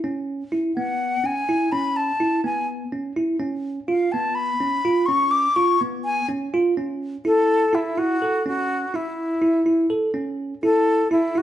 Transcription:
0.04 0.43 C#4 medium
0.52 0.71 E4 medium
0.76 1.15 B3 medium
0.76 1.27 F#5 medium
1.24 1.43 C#4 medium
1.24 1.73 G#5 medium
1.49 1.68 E4 medium
1.72 2.11 C#4 medium
1.72 1.98 B5 medium
1.96 2.44 A5 medium
2.20 2.40 E4 medium
2.44 2.83 B3 medium
2.44 2.67 G#5 medium
2.92 3.12 C#4 medium
3.16 3.36 E4 medium
3.40 3.79 C#4 medium
3.88 4.08 F4 medium
3.88 4.13 F5 medium
4.12 4.52 B3 medium
4.12 4.37 A5 medium
4.35 5.07 B5 loud
4.61 4.80 C#4 medium
4.85 5.04 F4 medium
5.06 5.47 C#4 medium
5.06 5.32 C#6 medium
5.31 5.57 D6 loud
5.56 5.76 F4 medium
5.56 5.81 C#6 loud
5.81 6.20 B3 medium
6.05 6.27 G#5 loud
6.29 6.48 C#4 medium
6.54 6.73 F4 medium
6.77 7.16 C#4 medium
7.25 7.64 E4 medium
7.25 7.76 A4 medium
7.73 7.93 E4 medium
7.73 8.00 E4 medium
7.97 8.17 E4 medium
7.97 8.46 F#4 medium
8.22 8.41 A4 medium
8.46 8.85 C#4 medium
8.46 8.97 F#4 medium
8.94 9.33 E4 medium
8.94 9.91 E4 medium
9.42 9.62 E4 medium
9.66 9.86 E4 medium
9.90 10.10 A4 medium
10.14 10.53 C#4 medium
10.63 11.02 E4 medium
10.63 11.08 A4 medium
11.11 11.31 E4 medium
11.11 11.39 E4 medium
11.35 11.42 E4 medium
11.35 11.42 F#4 medium

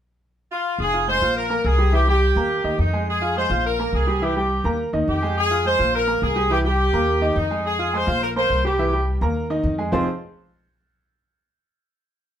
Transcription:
0.52 0.78 F4 medium
0.79 1.19 F1 loud
0.79 1.06 G#4 loud
0.93 1.05 F4 medium
0.93 1.05 F5 medium
0.93 1.05 F6 medium
1.08 1.19 G#3 medium
1.08 1.20 G#4 medium
1.08 1.34 C5 loud
1.08 1.20 G#5 medium
1.21 1.61 A#1 medium
1.21 1.45 F4 medium
1.21 1.45 F5 medium
1.21 1.45 F6 medium
1.36 1.63 A#4 medium
1.49 1.73 A#3 medium
1.49 1.73 A#4 medium
1.49 1.74 A#5 medium
1.64 2.30 C2 medium
1.64 1.93 G#4 medium
1.78 1.90 G3 medium
1.78 1.90 G4 medium
1.78 1.90 G5 medium
1.92 2.04 E3 medium
1.92 2.04 E4 medium
1.92 2.07 G4 loud
1.92 2.05 E5 medium
2.07 2.31 G3 medium
2.07 2.31 G4 medium
2.07 2.75 G4 medium
2.07 2.31 G5 medium
2.35 2.62 D#2 medium
2.35 2.59 A#3 medium
2.35 2.59 A#4 medium
2.35 2.60 A#5 medium
2.64 2.78 D#2 medium
2.64 2.87 D#3 medium
2.64 2.88 D#4 medium
2.64 2.88 D#5 medium
2.78 3.44 F2 medium
2.78 3.06 D#4 medium
2.93 3.16 G#3 medium
2.93 3.16 G#4 medium
2.93 3.17 G#5 medium
3.09 3.35 G#4 loud
3.21 3.33 F4 medium
3.21 3.33 F5 medium
3.21 3.33 F6 medium
3.36 3.48 G#3 medium
3.36 3.48 G#4 medium
3.36 3.63 C5 loud
3.36 3.48 G#5 medium
3.50 3.90 A#1 loud
3.50 3.74 F4 medium
3.50 3.74 F5 medium
3.50 3.74 F6 medium
3.66 3.92 A#4 loud
3.79 4.02 A#3 medium
3.79 4.02 A#4 medium
3.79 4.03 A#5 medium
3.93 4.59 C2 medium
3.93 4.20 G#4 medium
4.07 4.19 G3 medium
4.07 4.19 G4 medium
4.07 4.19 G5 medium
4.22 4.33 E3 medium
4.22 4.33 E4 medium
4.22 4.36 G4 loud
4.22 4.34 E5 medium
4.36 4.59 G3 medium
4.36 4.60 G4 medium
4.36 4.78 G4 medium
4.36 4.60 G5 medium
4.64 4.91 D#2 medium
4.64 4.88 A#3 medium
4.64 4.88 A#4 medium
4.64 4.88 A#5 medium
4.93 5.06 D#2 medium
4.93 5.17 D#3 medium
4.93 5.16 D#4 medium
4.93 5.17 D#5 medium
5.08 5.74 F2 medium
5.08 5.35 G4 medium
5.22 5.45 G#3 medium
5.22 5.45 G#4 medium
5.22 5.46 G#5 medium
5.38 5.64 G#4 loud
5.51 5.62 F4 medium
5.51 5.62 F5 medium
5.51 5.63 F6 medium
5.65 5.76 G#3 medium
5.65 5.77 G#4 medium
5.65 5.92 C5 loud
5.65 5.77 G#5 medium
5.79 6.19 A#1 medium
5.79 6.02 F4 medium
5.79 6.02 F5 medium
5.79 6.03 F6 medium
5.95 6.21 A#4 loud
6.07 6.31 A#3 medium
6.07 6.31 A#4 medium
6.07 6.31 A#5 medium
6.22 6.88 C2 loud
6.22 6.49 G#4 medium
6.36 6.48 G3 medium
6.36 6.48 G4 medium
6.36 6.48 G5 medium
6.50 6.62 E3 medium
6.50 6.62 E4 medium
6.50 6.58 G4 medium
6.50 6.62 E5 medium
6.64 6.88 G3 medium
6.64 6.88 G4 medium
6.64 7.33 G4 loud
6.64 6.88 G5 medium
6.93 7.33 D#2 medium
6.93 7.17 A#3 medium
6.93 7.17 A#4 medium
6.93 7.17 A#5 medium
7.21 7.45 D#3 medium
7.21 7.45 D#4 medium
7.21 7.45 D#5 medium
7.36 8.02 F2 medium
7.36 7.63 D#4 medium
7.50 7.74 G#3 medium
7.50 7.74 G#4 medium
7.50 7.74 G#5 medium
7.66 7.92 G#4 loud
7.79 7.91 F4 medium
7.79 7.91 F5 medium
7.79 7.91 F6 medium
7.93 8.05 G#3 medium
7.93 8.05 G#4 medium
7.93 8.22 C5 loud
7.93 8.05 G#5 medium
8.07 8.47 A#1 medium
8.07 8.31 F4 medium
8.07 8.31 F5 medium
8.07 8.31 F6 medium
8.23 8.29 A#4 medium
8.36 8.59 A#3 medium
8.36 8.60 A#4 medium
8.36 8.63 C5 loud
8.36 8.60 A#5 medium
8.50 9.16 C2 medium
8.64 8.76 G3 medium
8.64 8.76 G4 medium
8.64 9.05 G4 medium
8.64 8.76 G5 medium
8.78 8.90 E3 medium
8.78 8.90 E4 medium
8.78 8.91 E5 medium
8.93 9.16 G3 medium
8.93 9.16 G4 medium
8.93 9.17 G5 medium
9.21 9.61 D#2 medium
9.21 9.45 A#3 medium
9.21 9.45 A#4 medium
9.21 9.45 A#5 medium
9.50 9.73 D#3 medium
9.50 9.73 D#4 medium
9.50 9.73 D#5 medium
9.63 9.89 F2 medium
9.78 9.90 G#3 medium
9.78 9.90 G#4 medium
9.78 9.90 G#5 medium
9.92 10.06 F1 medium
9.92 10.05 F3 medium
9.92 10.05 C4 medium
9.92 10.06 D#4 medium
9.92 10.06 F4 medium
9.92 10.06 G#4 medium
9.92 10.06 C5 loud

